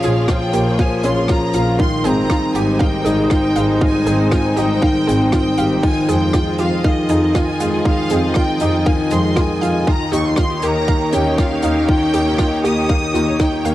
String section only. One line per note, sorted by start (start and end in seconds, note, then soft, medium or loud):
0.00 3.41 A#3 medium
0.00 2.60 F4 medium
0.00 1.81 G#4 medium
0.00 1.80 C#5 medium
1.80 5.83 G#3 medium
1.96 6.60 D#4 medium
2.18 5.83 G3 medium
2.67 7.45 C5 medium
5.83 9.87 F3 medium
5.90 10.56 F4 medium
6.45 9.87 G#4 medium
6.45 11.48 D#5 medium
9.86 13.75 D#3 medium
10.05 13.75 D#4 medium
10.44 13.75 G4 medium
10.58 13.75 C#5 medium